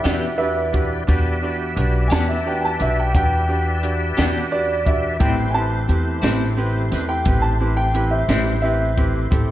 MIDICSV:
0, 0, Header, 1, 7, 480
1, 0, Start_track
1, 0, Key_signature, 1, "minor"
1, 0, Tempo, 687285
1, 754, Time_signature, 12, 3, 24, 8
1, 6643, End_track
2, 0, Start_track
2, 0, Title_t, "Upright piano"
2, 0, Program_c, 0, 0
2, 33, Note_on_c, 0, 76, 65
2, 255, Note_off_c, 0, 76, 0
2, 262, Note_on_c, 0, 71, 74
2, 266, Note_on_c, 0, 76, 83
2, 491, Note_off_c, 0, 71, 0
2, 502, Note_off_c, 0, 76, 0
2, 1452, Note_on_c, 0, 80, 60
2, 1480, Note_off_c, 0, 80, 0
2, 1482, Note_on_c, 0, 81, 80
2, 1590, Note_off_c, 0, 81, 0
2, 1598, Note_on_c, 0, 76, 60
2, 1708, Note_off_c, 0, 76, 0
2, 1729, Note_on_c, 0, 79, 62
2, 1818, Note_on_c, 0, 80, 52
2, 1834, Note_off_c, 0, 79, 0
2, 1844, Note_off_c, 0, 80, 0
2, 1849, Note_on_c, 0, 81, 75
2, 1954, Note_off_c, 0, 81, 0
2, 1969, Note_on_c, 0, 76, 80
2, 2074, Note_off_c, 0, 76, 0
2, 2092, Note_on_c, 0, 79, 65
2, 2180, Note_on_c, 0, 78, 54
2, 2196, Note_off_c, 0, 79, 0
2, 2206, Note_off_c, 0, 78, 0
2, 2208, Note_on_c, 0, 79, 81
2, 2667, Note_off_c, 0, 79, 0
2, 3157, Note_on_c, 0, 74, 74
2, 3388, Note_off_c, 0, 74, 0
2, 3398, Note_on_c, 0, 76, 61
2, 3629, Note_off_c, 0, 76, 0
2, 3636, Note_on_c, 0, 79, 72
2, 3845, Note_on_c, 0, 80, 52
2, 3868, Note_off_c, 0, 79, 0
2, 3872, Note_on_c, 0, 81, 86
2, 3874, Note_off_c, 0, 80, 0
2, 4924, Note_off_c, 0, 81, 0
2, 4950, Note_on_c, 0, 79, 68
2, 5181, Note_on_c, 0, 81, 71
2, 5184, Note_off_c, 0, 79, 0
2, 5419, Note_off_c, 0, 81, 0
2, 5425, Note_on_c, 0, 79, 71
2, 5661, Note_off_c, 0, 79, 0
2, 5664, Note_on_c, 0, 76, 68
2, 6009, Note_off_c, 0, 76, 0
2, 6020, Note_on_c, 0, 76, 77
2, 6643, Note_off_c, 0, 76, 0
2, 6643, End_track
3, 0, Start_track
3, 0, Title_t, "Tonewheel organ"
3, 0, Program_c, 1, 16
3, 0, Note_on_c, 1, 64, 57
3, 0, Note_on_c, 1, 67, 59
3, 0, Note_on_c, 1, 71, 64
3, 0, Note_on_c, 1, 74, 60
3, 721, Note_off_c, 1, 74, 0
3, 723, Note_off_c, 1, 64, 0
3, 724, Note_off_c, 1, 67, 0
3, 724, Note_off_c, 1, 71, 0
3, 764, Note_on_c, 1, 74, 62
3, 766, Note_on_c, 1, 67, 64
3, 766, Note_on_c, 1, 76, 61
3, 767, Note_on_c, 1, 71, 60
3, 3611, Note_off_c, 1, 74, 0
3, 3612, Note_off_c, 1, 67, 0
3, 3612, Note_off_c, 1, 76, 0
3, 3613, Note_off_c, 1, 71, 0
3, 3630, Note_on_c, 1, 64, 59
3, 3633, Note_on_c, 1, 67, 61
3, 3634, Note_on_c, 1, 57, 62
3, 3638, Note_on_c, 1, 72, 58
3, 6480, Note_off_c, 1, 64, 0
3, 6482, Note_off_c, 1, 57, 0
3, 6482, Note_off_c, 1, 67, 0
3, 6484, Note_off_c, 1, 72, 0
3, 6508, Note_on_c, 1, 67, 61
3, 6511, Note_on_c, 1, 60, 63
3, 6512, Note_on_c, 1, 64, 61
3, 6515, Note_on_c, 1, 57, 62
3, 6643, Note_off_c, 1, 57, 0
3, 6643, Note_off_c, 1, 60, 0
3, 6643, Note_off_c, 1, 64, 0
3, 6643, Note_off_c, 1, 67, 0
3, 6643, End_track
4, 0, Start_track
4, 0, Title_t, "Grand piano"
4, 0, Program_c, 2, 0
4, 23, Note_on_c, 2, 62, 46
4, 28, Note_on_c, 2, 66, 46
4, 30, Note_on_c, 2, 67, 44
4, 34, Note_on_c, 2, 71, 54
4, 208, Note_off_c, 2, 62, 0
4, 211, Note_off_c, 2, 66, 0
4, 212, Note_off_c, 2, 67, 0
4, 214, Note_off_c, 2, 71, 0
4, 266, Note_on_c, 2, 62, 46
4, 268, Note_on_c, 2, 66, 46
4, 273, Note_on_c, 2, 67, 44
4, 275, Note_on_c, 2, 71, 51
4, 450, Note_off_c, 2, 62, 0
4, 451, Note_off_c, 2, 66, 0
4, 454, Note_off_c, 2, 67, 0
4, 455, Note_off_c, 2, 71, 0
4, 508, Note_on_c, 2, 62, 48
4, 512, Note_on_c, 2, 66, 41
4, 518, Note_on_c, 2, 67, 40
4, 522, Note_on_c, 2, 71, 50
4, 691, Note_off_c, 2, 62, 0
4, 693, Note_off_c, 2, 66, 0
4, 696, Note_off_c, 2, 67, 0
4, 698, Note_off_c, 2, 71, 0
4, 749, Note_on_c, 2, 62, 66
4, 754, Note_on_c, 2, 66, 60
4, 756, Note_on_c, 2, 67, 62
4, 763, Note_on_c, 2, 71, 71
4, 932, Note_off_c, 2, 62, 0
4, 934, Note_off_c, 2, 66, 0
4, 935, Note_off_c, 2, 67, 0
4, 939, Note_off_c, 2, 71, 0
4, 993, Note_on_c, 2, 62, 51
4, 998, Note_on_c, 2, 66, 49
4, 1001, Note_on_c, 2, 67, 47
4, 1005, Note_on_c, 2, 71, 57
4, 1174, Note_off_c, 2, 62, 0
4, 1176, Note_off_c, 2, 66, 0
4, 1178, Note_off_c, 2, 67, 0
4, 1180, Note_off_c, 2, 71, 0
4, 1231, Note_on_c, 2, 62, 55
4, 1238, Note_on_c, 2, 66, 50
4, 1240, Note_on_c, 2, 67, 48
4, 1244, Note_on_c, 2, 71, 57
4, 1413, Note_off_c, 2, 62, 0
4, 1416, Note_off_c, 2, 66, 0
4, 1417, Note_off_c, 2, 67, 0
4, 1419, Note_off_c, 2, 71, 0
4, 1472, Note_on_c, 2, 62, 45
4, 1478, Note_on_c, 2, 66, 40
4, 1482, Note_on_c, 2, 67, 44
4, 1485, Note_on_c, 2, 71, 48
4, 1653, Note_off_c, 2, 62, 0
4, 1656, Note_off_c, 2, 66, 0
4, 1658, Note_off_c, 2, 67, 0
4, 1660, Note_off_c, 2, 71, 0
4, 1711, Note_on_c, 2, 62, 44
4, 1714, Note_on_c, 2, 66, 41
4, 1719, Note_on_c, 2, 67, 41
4, 1721, Note_on_c, 2, 71, 50
4, 1893, Note_off_c, 2, 62, 0
4, 1895, Note_off_c, 2, 66, 0
4, 1897, Note_off_c, 2, 67, 0
4, 1898, Note_off_c, 2, 71, 0
4, 1949, Note_on_c, 2, 62, 43
4, 1951, Note_on_c, 2, 66, 41
4, 1954, Note_on_c, 2, 67, 40
4, 1960, Note_on_c, 2, 71, 49
4, 2132, Note_off_c, 2, 62, 0
4, 2133, Note_off_c, 2, 66, 0
4, 2134, Note_off_c, 2, 67, 0
4, 2137, Note_off_c, 2, 71, 0
4, 2192, Note_on_c, 2, 62, 46
4, 2196, Note_on_c, 2, 66, 42
4, 2202, Note_on_c, 2, 67, 42
4, 2205, Note_on_c, 2, 71, 52
4, 2373, Note_off_c, 2, 62, 0
4, 2376, Note_off_c, 2, 66, 0
4, 2379, Note_off_c, 2, 67, 0
4, 2380, Note_off_c, 2, 71, 0
4, 2431, Note_on_c, 2, 66, 40
4, 2432, Note_on_c, 2, 62, 46
4, 2437, Note_on_c, 2, 67, 43
4, 2441, Note_on_c, 2, 71, 51
4, 2613, Note_off_c, 2, 62, 0
4, 2613, Note_off_c, 2, 66, 0
4, 2616, Note_off_c, 2, 67, 0
4, 2618, Note_off_c, 2, 71, 0
4, 2673, Note_on_c, 2, 62, 43
4, 2676, Note_on_c, 2, 66, 41
4, 2681, Note_on_c, 2, 67, 38
4, 2685, Note_on_c, 2, 71, 47
4, 2854, Note_off_c, 2, 62, 0
4, 2856, Note_off_c, 2, 66, 0
4, 2858, Note_off_c, 2, 67, 0
4, 2860, Note_off_c, 2, 71, 0
4, 2911, Note_on_c, 2, 62, 53
4, 2914, Note_on_c, 2, 66, 52
4, 2918, Note_on_c, 2, 67, 53
4, 2922, Note_on_c, 2, 71, 62
4, 3093, Note_off_c, 2, 62, 0
4, 3094, Note_off_c, 2, 66, 0
4, 3096, Note_off_c, 2, 67, 0
4, 3098, Note_off_c, 2, 71, 0
4, 3150, Note_on_c, 2, 62, 42
4, 3157, Note_on_c, 2, 66, 40
4, 3160, Note_on_c, 2, 67, 40
4, 3161, Note_on_c, 2, 71, 45
4, 3332, Note_off_c, 2, 62, 0
4, 3336, Note_off_c, 2, 66, 0
4, 3337, Note_off_c, 2, 67, 0
4, 3338, Note_off_c, 2, 71, 0
4, 3390, Note_on_c, 2, 62, 46
4, 3394, Note_on_c, 2, 66, 40
4, 3399, Note_on_c, 2, 67, 39
4, 3402, Note_on_c, 2, 74, 47
4, 3572, Note_off_c, 2, 62, 0
4, 3574, Note_off_c, 2, 66, 0
4, 3577, Note_off_c, 2, 67, 0
4, 3578, Note_off_c, 2, 74, 0
4, 3628, Note_on_c, 2, 60, 53
4, 3629, Note_on_c, 2, 64, 48
4, 3634, Note_on_c, 2, 67, 47
4, 3637, Note_on_c, 2, 71, 57
4, 3811, Note_off_c, 2, 60, 0
4, 3812, Note_off_c, 2, 64, 0
4, 3814, Note_off_c, 2, 67, 0
4, 3815, Note_off_c, 2, 71, 0
4, 3870, Note_on_c, 2, 60, 46
4, 3873, Note_on_c, 2, 64, 41
4, 3877, Note_on_c, 2, 67, 40
4, 3882, Note_on_c, 2, 71, 49
4, 4052, Note_off_c, 2, 60, 0
4, 4053, Note_off_c, 2, 64, 0
4, 4055, Note_off_c, 2, 67, 0
4, 4058, Note_off_c, 2, 71, 0
4, 4108, Note_on_c, 2, 60, 45
4, 4116, Note_on_c, 2, 64, 42
4, 4117, Note_on_c, 2, 67, 42
4, 4122, Note_on_c, 2, 71, 46
4, 4291, Note_off_c, 2, 60, 0
4, 4295, Note_off_c, 2, 64, 0
4, 4295, Note_off_c, 2, 67, 0
4, 4298, Note_off_c, 2, 71, 0
4, 4345, Note_on_c, 2, 60, 48
4, 4349, Note_on_c, 2, 64, 42
4, 4353, Note_on_c, 2, 67, 40
4, 4357, Note_on_c, 2, 71, 50
4, 4529, Note_off_c, 2, 60, 0
4, 4531, Note_off_c, 2, 64, 0
4, 4533, Note_off_c, 2, 67, 0
4, 4535, Note_off_c, 2, 71, 0
4, 4587, Note_on_c, 2, 60, 59
4, 4591, Note_on_c, 2, 64, 49
4, 4593, Note_on_c, 2, 67, 53
4, 4599, Note_on_c, 2, 71, 63
4, 4770, Note_off_c, 2, 60, 0
4, 4772, Note_off_c, 2, 64, 0
4, 4773, Note_off_c, 2, 67, 0
4, 4776, Note_off_c, 2, 71, 0
4, 4827, Note_on_c, 2, 60, 44
4, 4832, Note_on_c, 2, 64, 39
4, 4836, Note_on_c, 2, 67, 40
4, 4840, Note_on_c, 2, 71, 51
4, 5010, Note_off_c, 2, 60, 0
4, 5012, Note_off_c, 2, 64, 0
4, 5014, Note_off_c, 2, 67, 0
4, 5016, Note_off_c, 2, 71, 0
4, 5072, Note_on_c, 2, 60, 46
4, 5074, Note_on_c, 2, 64, 44
4, 5079, Note_on_c, 2, 67, 45
4, 5083, Note_on_c, 2, 71, 50
4, 5252, Note_off_c, 2, 60, 0
4, 5253, Note_off_c, 2, 64, 0
4, 5256, Note_off_c, 2, 67, 0
4, 5258, Note_off_c, 2, 71, 0
4, 5307, Note_on_c, 2, 60, 48
4, 5309, Note_on_c, 2, 64, 43
4, 5316, Note_on_c, 2, 67, 39
4, 5320, Note_on_c, 2, 71, 52
4, 5489, Note_off_c, 2, 60, 0
4, 5490, Note_off_c, 2, 64, 0
4, 5494, Note_off_c, 2, 67, 0
4, 5496, Note_off_c, 2, 71, 0
4, 5547, Note_on_c, 2, 60, 44
4, 5550, Note_on_c, 2, 64, 43
4, 5554, Note_on_c, 2, 67, 41
4, 5557, Note_on_c, 2, 71, 51
4, 5729, Note_off_c, 2, 60, 0
4, 5731, Note_off_c, 2, 64, 0
4, 5733, Note_off_c, 2, 67, 0
4, 5734, Note_off_c, 2, 71, 0
4, 5784, Note_on_c, 2, 60, 50
4, 5789, Note_on_c, 2, 64, 45
4, 5793, Note_on_c, 2, 67, 45
4, 5793, Note_on_c, 2, 71, 49
4, 5968, Note_off_c, 2, 60, 0
4, 5970, Note_off_c, 2, 64, 0
4, 5972, Note_off_c, 2, 67, 0
4, 5972, Note_off_c, 2, 71, 0
4, 6028, Note_on_c, 2, 60, 45
4, 6029, Note_on_c, 2, 64, 43
4, 6035, Note_on_c, 2, 67, 40
4, 6037, Note_on_c, 2, 71, 53
4, 6209, Note_off_c, 2, 60, 0
4, 6210, Note_off_c, 2, 64, 0
4, 6213, Note_off_c, 2, 67, 0
4, 6214, Note_off_c, 2, 71, 0
4, 6266, Note_on_c, 2, 60, 47
4, 6271, Note_on_c, 2, 64, 43
4, 6272, Note_on_c, 2, 67, 43
4, 6275, Note_on_c, 2, 71, 48
4, 6448, Note_off_c, 2, 60, 0
4, 6450, Note_off_c, 2, 64, 0
4, 6451, Note_off_c, 2, 67, 0
4, 6452, Note_off_c, 2, 71, 0
4, 6499, Note_on_c, 2, 60, 53
4, 6502, Note_on_c, 2, 64, 47
4, 6507, Note_on_c, 2, 67, 49
4, 6511, Note_on_c, 2, 69, 59
4, 6643, Note_off_c, 2, 60, 0
4, 6643, Note_off_c, 2, 64, 0
4, 6643, Note_off_c, 2, 67, 0
4, 6643, Note_off_c, 2, 69, 0
4, 6643, End_track
5, 0, Start_track
5, 0, Title_t, "Clean electric guitar"
5, 0, Program_c, 3, 27
5, 28, Note_on_c, 3, 67, 63
5, 37, Note_on_c, 3, 62, 58
5, 39, Note_on_c, 3, 59, 54
5, 45, Note_on_c, 3, 52, 48
5, 175, Note_off_c, 3, 67, 0
5, 179, Note_off_c, 3, 62, 0
5, 180, Note_off_c, 3, 59, 0
5, 183, Note_off_c, 3, 52, 0
5, 1467, Note_on_c, 3, 67, 61
5, 1476, Note_on_c, 3, 62, 55
5, 1479, Note_on_c, 3, 59, 55
5, 1486, Note_on_c, 3, 52, 49
5, 1615, Note_off_c, 3, 67, 0
5, 1620, Note_off_c, 3, 62, 0
5, 1621, Note_off_c, 3, 59, 0
5, 1624, Note_off_c, 3, 52, 0
5, 2911, Note_on_c, 3, 67, 65
5, 2917, Note_on_c, 3, 62, 64
5, 2922, Note_on_c, 3, 59, 55
5, 2927, Note_on_c, 3, 52, 48
5, 3057, Note_off_c, 3, 67, 0
5, 3060, Note_off_c, 3, 62, 0
5, 3062, Note_off_c, 3, 59, 0
5, 3065, Note_off_c, 3, 52, 0
5, 3628, Note_on_c, 3, 45, 54
5, 3633, Note_on_c, 3, 55, 57
5, 3641, Note_on_c, 3, 60, 66
5, 3644, Note_on_c, 3, 64, 63
5, 3775, Note_off_c, 3, 45, 0
5, 3778, Note_off_c, 3, 55, 0
5, 3781, Note_off_c, 3, 60, 0
5, 3783, Note_off_c, 3, 64, 0
5, 4343, Note_on_c, 3, 64, 61
5, 4351, Note_on_c, 3, 60, 56
5, 4353, Note_on_c, 3, 55, 54
5, 4359, Note_on_c, 3, 45, 51
5, 4492, Note_off_c, 3, 64, 0
5, 4496, Note_off_c, 3, 60, 0
5, 4497, Note_off_c, 3, 55, 0
5, 4500, Note_off_c, 3, 45, 0
5, 5789, Note_on_c, 3, 64, 64
5, 5794, Note_on_c, 3, 60, 52
5, 5799, Note_on_c, 3, 55, 55
5, 5803, Note_on_c, 3, 45, 51
5, 5934, Note_off_c, 3, 64, 0
5, 5937, Note_off_c, 3, 60, 0
5, 5939, Note_off_c, 3, 55, 0
5, 5941, Note_off_c, 3, 45, 0
5, 6643, End_track
6, 0, Start_track
6, 0, Title_t, "Upright bass"
6, 0, Program_c, 4, 32
6, 33, Note_on_c, 4, 40, 71
6, 726, Note_off_c, 4, 40, 0
6, 758, Note_on_c, 4, 40, 81
6, 1208, Note_off_c, 4, 40, 0
6, 1233, Note_on_c, 4, 35, 82
6, 1455, Note_off_c, 4, 35, 0
6, 1476, Note_on_c, 4, 40, 82
6, 1928, Note_off_c, 4, 40, 0
6, 1959, Note_on_c, 4, 35, 70
6, 2178, Note_off_c, 4, 35, 0
6, 2199, Note_on_c, 4, 40, 78
6, 2889, Note_off_c, 4, 40, 0
6, 2920, Note_on_c, 4, 40, 65
6, 3609, Note_off_c, 4, 40, 0
6, 3636, Note_on_c, 4, 33, 84
6, 4087, Note_off_c, 4, 33, 0
6, 4111, Note_on_c, 4, 40, 78
6, 4333, Note_off_c, 4, 40, 0
6, 4350, Note_on_c, 4, 33, 84
6, 4803, Note_off_c, 4, 33, 0
6, 4832, Note_on_c, 4, 40, 71
6, 5053, Note_off_c, 4, 40, 0
6, 5070, Note_on_c, 4, 33, 77
6, 5762, Note_off_c, 4, 33, 0
6, 5787, Note_on_c, 4, 33, 73
6, 6480, Note_off_c, 4, 33, 0
6, 6509, Note_on_c, 4, 33, 88
6, 6643, Note_off_c, 4, 33, 0
6, 6643, End_track
7, 0, Start_track
7, 0, Title_t, "Drums"
7, 35, Note_on_c, 9, 42, 70
7, 44, Note_on_c, 9, 38, 91
7, 105, Note_off_c, 9, 42, 0
7, 114, Note_off_c, 9, 38, 0
7, 516, Note_on_c, 9, 42, 51
7, 517, Note_on_c, 9, 36, 63
7, 586, Note_off_c, 9, 42, 0
7, 587, Note_off_c, 9, 36, 0
7, 759, Note_on_c, 9, 36, 87
7, 760, Note_on_c, 9, 42, 72
7, 828, Note_off_c, 9, 36, 0
7, 830, Note_off_c, 9, 42, 0
7, 1237, Note_on_c, 9, 42, 55
7, 1307, Note_off_c, 9, 42, 0
7, 1475, Note_on_c, 9, 42, 67
7, 1484, Note_on_c, 9, 38, 87
7, 1545, Note_off_c, 9, 42, 0
7, 1554, Note_off_c, 9, 38, 0
7, 1954, Note_on_c, 9, 42, 53
7, 2024, Note_off_c, 9, 42, 0
7, 2197, Note_on_c, 9, 36, 89
7, 2197, Note_on_c, 9, 42, 73
7, 2267, Note_off_c, 9, 36, 0
7, 2267, Note_off_c, 9, 42, 0
7, 2676, Note_on_c, 9, 42, 50
7, 2746, Note_off_c, 9, 42, 0
7, 2915, Note_on_c, 9, 42, 69
7, 2924, Note_on_c, 9, 38, 92
7, 2985, Note_off_c, 9, 42, 0
7, 2994, Note_off_c, 9, 38, 0
7, 3398, Note_on_c, 9, 36, 68
7, 3399, Note_on_c, 9, 42, 51
7, 3468, Note_off_c, 9, 36, 0
7, 3469, Note_off_c, 9, 42, 0
7, 3634, Note_on_c, 9, 42, 70
7, 3637, Note_on_c, 9, 36, 92
7, 3703, Note_off_c, 9, 42, 0
7, 3706, Note_off_c, 9, 36, 0
7, 4113, Note_on_c, 9, 42, 49
7, 4183, Note_off_c, 9, 42, 0
7, 4351, Note_on_c, 9, 42, 61
7, 4360, Note_on_c, 9, 38, 89
7, 4421, Note_off_c, 9, 42, 0
7, 4430, Note_off_c, 9, 38, 0
7, 4831, Note_on_c, 9, 42, 52
7, 4840, Note_on_c, 9, 38, 27
7, 4901, Note_off_c, 9, 42, 0
7, 4910, Note_off_c, 9, 38, 0
7, 5066, Note_on_c, 9, 42, 69
7, 5070, Note_on_c, 9, 36, 89
7, 5136, Note_off_c, 9, 42, 0
7, 5140, Note_off_c, 9, 36, 0
7, 5549, Note_on_c, 9, 42, 55
7, 5618, Note_off_c, 9, 42, 0
7, 5789, Note_on_c, 9, 42, 69
7, 5798, Note_on_c, 9, 38, 90
7, 5858, Note_off_c, 9, 42, 0
7, 5867, Note_off_c, 9, 38, 0
7, 6269, Note_on_c, 9, 36, 67
7, 6269, Note_on_c, 9, 42, 58
7, 6338, Note_off_c, 9, 42, 0
7, 6339, Note_off_c, 9, 36, 0
7, 6508, Note_on_c, 9, 36, 99
7, 6508, Note_on_c, 9, 42, 72
7, 6578, Note_off_c, 9, 36, 0
7, 6578, Note_off_c, 9, 42, 0
7, 6643, End_track
0, 0, End_of_file